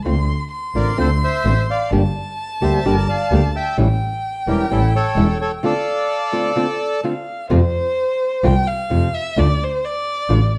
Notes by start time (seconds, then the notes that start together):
0.04 D2 D3 A3 C4 F4 C6
0.51 C6
0.74 A1 D3 A3 C4 F4 A#4 D5
0.97 D2 D3 A3 C4 F4 A4 C5
1.24 C5 E5
1.45 A1 D3 A3 C4 F4
1.70 D5 F5
1.92 G1 D3 G3 A#3 D4 G4 A5
2.61 D2 D3 G3 A#3 D4 G4 C5 E5
2.85 G1 D3 G3 A#3 D4 G4 A#4 D5
3.09 D5 F5
3.31 D2 D3 G3 A#3 D4 G4
3.56 E5 G5
3.77 A1 E3 G3 C#4 E4 G5
4.47 E1 E3 G3 C#4 E4 G4 A#4
4.70 A1 E3 G3 C#4 E4 A4
4.96 A4 C#5
5.16 E1 E3 G3 C#4 E4
5.41 A4 C#5
5.63 D3 A3 C4 F4 A4 D5 F5
6.32 D3 A3 C4 F4
6.56 D3 A3 C4 F4 A5
7.03 D3 A3 C4 F4 F5
7.50 F2 C3 F3 A3 C4 F4 C5
8.43 C2 C3 F3 A3 C4 F4 G5
8.67 F5
8.90 F2 C3 F3 A3 C4 F4
9.14 E5
9.37 D2 D3 A3 D4 F4 D5
9.63 C5
9.85 D5
10.29 A1 D3 A3 D4 F4